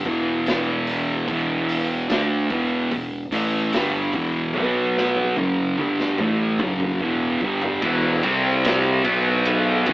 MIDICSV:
0, 0, Header, 1, 4, 480
1, 0, Start_track
1, 0, Key_signature, 1, "minor"
1, 0, Tempo, 817439
1, 752, Time_signature, 4, 2, 24, 8
1, 5832, End_track
2, 0, Start_track
2, 0, Title_t, "Distorted electric guitar"
2, 0, Program_c, 0, 30
2, 32, Note_on_c, 0, 40, 80
2, 33, Note_on_c, 0, 47, 87
2, 36, Note_on_c, 0, 52, 104
2, 745, Note_off_c, 0, 40, 0
2, 745, Note_off_c, 0, 47, 0
2, 747, Note_off_c, 0, 52, 0
2, 753, Note_on_c, 0, 40, 88
2, 759, Note_on_c, 0, 47, 92
2, 760, Note_on_c, 0, 52, 103
2, 1226, Note_off_c, 0, 40, 0
2, 1229, Note_off_c, 0, 47, 0
2, 1229, Note_off_c, 0, 52, 0
2, 1231, Note_on_c, 0, 50, 98
2, 1236, Note_on_c, 0, 57, 100
2, 1240, Note_on_c, 0, 62, 108
2, 1465, Note_off_c, 0, 50, 0
2, 1467, Note_off_c, 0, 57, 0
2, 1469, Note_off_c, 0, 62, 0
2, 1472, Note_on_c, 0, 40, 91
2, 1476, Note_on_c, 0, 47, 92
2, 1477, Note_on_c, 0, 52, 87
2, 1705, Note_off_c, 0, 40, 0
2, 1707, Note_off_c, 0, 47, 0
2, 1708, Note_off_c, 0, 52, 0
2, 1715, Note_on_c, 0, 40, 70
2, 1718, Note_on_c, 0, 47, 82
2, 1906, Note_off_c, 0, 40, 0
2, 1907, Note_off_c, 0, 47, 0
2, 1948, Note_on_c, 0, 45, 76
2, 1952, Note_on_c, 0, 52, 87
2, 1955, Note_on_c, 0, 57, 97
2, 2184, Note_off_c, 0, 45, 0
2, 2186, Note_off_c, 0, 52, 0
2, 2187, Note_off_c, 0, 57, 0
2, 2194, Note_on_c, 0, 43, 97
2, 2200, Note_on_c, 0, 50, 95
2, 2204, Note_on_c, 0, 55, 110
2, 2426, Note_off_c, 0, 43, 0
2, 2430, Note_off_c, 0, 50, 0
2, 2432, Note_off_c, 0, 55, 0
2, 2432, Note_on_c, 0, 40, 83
2, 2437, Note_on_c, 0, 47, 94
2, 2442, Note_on_c, 0, 52, 99
2, 2660, Note_off_c, 0, 47, 0
2, 2666, Note_off_c, 0, 40, 0
2, 2667, Note_on_c, 0, 47, 86
2, 2671, Note_off_c, 0, 52, 0
2, 2673, Note_on_c, 0, 54, 86
2, 2678, Note_on_c, 0, 59, 93
2, 3144, Note_off_c, 0, 47, 0
2, 3147, Note_off_c, 0, 54, 0
2, 3149, Note_off_c, 0, 59, 0
2, 3149, Note_on_c, 0, 42, 91
2, 3152, Note_on_c, 0, 49, 104
2, 3160, Note_on_c, 0, 54, 99
2, 3384, Note_off_c, 0, 42, 0
2, 3386, Note_off_c, 0, 49, 0
2, 3390, Note_off_c, 0, 54, 0
2, 3394, Note_on_c, 0, 43, 87
2, 3398, Note_on_c, 0, 50, 94
2, 3401, Note_on_c, 0, 55, 99
2, 3627, Note_off_c, 0, 43, 0
2, 3629, Note_off_c, 0, 50, 0
2, 3630, Note_off_c, 0, 55, 0
2, 3633, Note_on_c, 0, 45, 99
2, 3634, Note_on_c, 0, 52, 109
2, 3640, Note_on_c, 0, 57, 107
2, 3866, Note_off_c, 0, 45, 0
2, 3867, Note_off_c, 0, 52, 0
2, 3870, Note_off_c, 0, 57, 0
2, 3872, Note_on_c, 0, 42, 81
2, 3877, Note_on_c, 0, 49, 87
2, 3880, Note_on_c, 0, 54, 96
2, 4106, Note_off_c, 0, 42, 0
2, 4108, Note_off_c, 0, 49, 0
2, 4110, Note_off_c, 0, 54, 0
2, 4118, Note_on_c, 0, 40, 102
2, 4123, Note_on_c, 0, 47, 110
2, 4125, Note_on_c, 0, 52, 118
2, 4349, Note_off_c, 0, 40, 0
2, 4351, Note_off_c, 0, 47, 0
2, 4352, Note_off_c, 0, 52, 0
2, 4358, Note_on_c, 0, 43, 99
2, 4362, Note_on_c, 0, 50, 98
2, 4364, Note_on_c, 0, 55, 94
2, 4589, Note_off_c, 0, 43, 0
2, 4591, Note_off_c, 0, 50, 0
2, 4592, Note_off_c, 0, 55, 0
2, 4602, Note_on_c, 0, 40, 80
2, 4604, Note_on_c, 0, 47, 86
2, 4606, Note_on_c, 0, 52, 97
2, 4831, Note_off_c, 0, 40, 0
2, 4832, Note_off_c, 0, 47, 0
2, 4833, Note_off_c, 0, 52, 0
2, 4836, Note_on_c, 0, 48, 85
2, 4844, Note_on_c, 0, 55, 93
2, 4848, Note_on_c, 0, 60, 102
2, 5308, Note_off_c, 0, 48, 0
2, 5312, Note_off_c, 0, 55, 0
2, 5314, Note_off_c, 0, 60, 0
2, 5319, Note_on_c, 0, 47, 91
2, 5322, Note_on_c, 0, 54, 93
2, 5328, Note_on_c, 0, 59, 116
2, 5789, Note_off_c, 0, 47, 0
2, 5790, Note_off_c, 0, 54, 0
2, 5793, Note_off_c, 0, 59, 0
2, 5799, Note_on_c, 0, 40, 85
2, 5802, Note_on_c, 0, 47, 94
2, 5805, Note_on_c, 0, 52, 108
2, 5832, Note_off_c, 0, 40, 0
2, 5832, Note_off_c, 0, 47, 0
2, 5832, Note_off_c, 0, 52, 0
2, 5832, End_track
3, 0, Start_track
3, 0, Title_t, "Fingered electric bass"
3, 0, Program_c, 1, 33
3, 30, Note_on_c, 1, 28, 98
3, 728, Note_off_c, 1, 28, 0
3, 750, Note_on_c, 1, 28, 101
3, 1208, Note_off_c, 1, 28, 0
3, 1229, Note_on_c, 1, 38, 84
3, 1454, Note_off_c, 1, 38, 0
3, 1470, Note_on_c, 1, 28, 101
3, 1695, Note_off_c, 1, 28, 0
3, 1711, Note_on_c, 1, 28, 77
3, 1935, Note_off_c, 1, 28, 0
3, 1957, Note_on_c, 1, 33, 104
3, 2179, Note_off_c, 1, 33, 0
3, 2195, Note_on_c, 1, 31, 94
3, 2418, Note_off_c, 1, 31, 0
3, 2427, Note_on_c, 1, 28, 95
3, 2654, Note_off_c, 1, 28, 0
3, 2673, Note_on_c, 1, 35, 91
3, 3130, Note_off_c, 1, 35, 0
3, 3152, Note_on_c, 1, 30, 89
3, 3376, Note_off_c, 1, 30, 0
3, 3396, Note_on_c, 1, 31, 101
3, 3619, Note_off_c, 1, 31, 0
3, 3638, Note_on_c, 1, 33, 97
3, 3860, Note_off_c, 1, 33, 0
3, 3883, Note_on_c, 1, 30, 100
3, 4102, Note_off_c, 1, 30, 0
3, 4111, Note_on_c, 1, 28, 100
3, 4336, Note_off_c, 1, 28, 0
3, 4351, Note_on_c, 1, 31, 90
3, 4575, Note_off_c, 1, 31, 0
3, 4592, Note_on_c, 1, 28, 93
3, 4816, Note_off_c, 1, 28, 0
3, 4834, Note_on_c, 1, 36, 102
3, 5290, Note_off_c, 1, 36, 0
3, 5310, Note_on_c, 1, 35, 100
3, 5768, Note_off_c, 1, 35, 0
3, 5788, Note_on_c, 1, 28, 104
3, 5832, Note_off_c, 1, 28, 0
3, 5832, End_track
4, 0, Start_track
4, 0, Title_t, "Drums"
4, 31, Note_on_c, 9, 36, 114
4, 34, Note_on_c, 9, 46, 62
4, 90, Note_off_c, 9, 36, 0
4, 93, Note_off_c, 9, 46, 0
4, 272, Note_on_c, 9, 46, 84
4, 283, Note_on_c, 9, 38, 119
4, 330, Note_off_c, 9, 46, 0
4, 342, Note_off_c, 9, 38, 0
4, 510, Note_on_c, 9, 46, 51
4, 569, Note_off_c, 9, 46, 0
4, 750, Note_on_c, 9, 46, 74
4, 751, Note_on_c, 9, 36, 105
4, 808, Note_off_c, 9, 46, 0
4, 810, Note_off_c, 9, 36, 0
4, 992, Note_on_c, 9, 46, 53
4, 1051, Note_off_c, 9, 46, 0
4, 1230, Note_on_c, 9, 46, 66
4, 1242, Note_on_c, 9, 38, 111
4, 1289, Note_off_c, 9, 46, 0
4, 1301, Note_off_c, 9, 38, 0
4, 1469, Note_on_c, 9, 46, 55
4, 1471, Note_on_c, 9, 36, 118
4, 1527, Note_off_c, 9, 46, 0
4, 1529, Note_off_c, 9, 36, 0
4, 1710, Note_on_c, 9, 36, 93
4, 1711, Note_on_c, 9, 46, 76
4, 1769, Note_off_c, 9, 36, 0
4, 1770, Note_off_c, 9, 46, 0
4, 1949, Note_on_c, 9, 46, 61
4, 2007, Note_off_c, 9, 46, 0
4, 2187, Note_on_c, 9, 46, 84
4, 2199, Note_on_c, 9, 38, 124
4, 2246, Note_off_c, 9, 46, 0
4, 2258, Note_off_c, 9, 38, 0
4, 2426, Note_on_c, 9, 46, 55
4, 2430, Note_on_c, 9, 36, 92
4, 2485, Note_off_c, 9, 46, 0
4, 2489, Note_off_c, 9, 36, 0
4, 2665, Note_on_c, 9, 48, 64
4, 2724, Note_off_c, 9, 48, 0
4, 2921, Note_on_c, 9, 38, 65
4, 2980, Note_off_c, 9, 38, 0
4, 3029, Note_on_c, 9, 48, 60
4, 3088, Note_off_c, 9, 48, 0
4, 3149, Note_on_c, 9, 47, 72
4, 3208, Note_off_c, 9, 47, 0
4, 3390, Note_on_c, 9, 47, 74
4, 3448, Note_off_c, 9, 47, 0
4, 3523, Note_on_c, 9, 38, 65
4, 3582, Note_off_c, 9, 38, 0
4, 3630, Note_on_c, 9, 45, 88
4, 3689, Note_off_c, 9, 45, 0
4, 3870, Note_on_c, 9, 45, 93
4, 3929, Note_off_c, 9, 45, 0
4, 3992, Note_on_c, 9, 45, 76
4, 4050, Note_off_c, 9, 45, 0
4, 4112, Note_on_c, 9, 36, 92
4, 4171, Note_off_c, 9, 36, 0
4, 4352, Note_on_c, 9, 36, 98
4, 4410, Note_off_c, 9, 36, 0
4, 4473, Note_on_c, 9, 43, 89
4, 4532, Note_off_c, 9, 43, 0
4, 4592, Note_on_c, 9, 36, 100
4, 4592, Note_on_c, 9, 51, 95
4, 4651, Note_off_c, 9, 36, 0
4, 4651, Note_off_c, 9, 51, 0
4, 4832, Note_on_c, 9, 36, 102
4, 4833, Note_on_c, 9, 51, 77
4, 4890, Note_off_c, 9, 36, 0
4, 4891, Note_off_c, 9, 51, 0
4, 5076, Note_on_c, 9, 51, 102
4, 5087, Note_on_c, 9, 38, 126
4, 5134, Note_off_c, 9, 51, 0
4, 5146, Note_off_c, 9, 38, 0
4, 5311, Note_on_c, 9, 36, 114
4, 5311, Note_on_c, 9, 51, 77
4, 5370, Note_off_c, 9, 36, 0
4, 5370, Note_off_c, 9, 51, 0
4, 5551, Note_on_c, 9, 51, 99
4, 5609, Note_off_c, 9, 51, 0
4, 5790, Note_on_c, 9, 36, 120
4, 5791, Note_on_c, 9, 51, 80
4, 5832, Note_off_c, 9, 36, 0
4, 5832, Note_off_c, 9, 51, 0
4, 5832, End_track
0, 0, End_of_file